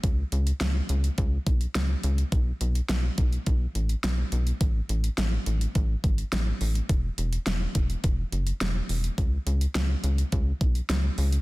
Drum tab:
HH |x-xxx-xxx-xxx-xx|x-xxx-xxx-xxx-xx|x-xxx-xxx-xxx-ox|x-xxx-xxx-xxx-ox|
SD |----o-------o---|----o-------o---|----o-------o---|----o-------o---|
BD |o-------o-o-----|o-----o-o-------|o-------o-o-----|o-----o-o-------|

HH |x-xxx-xxx-xxx-ox|
SD |----o-------o---|
BD |o-------o-o-----|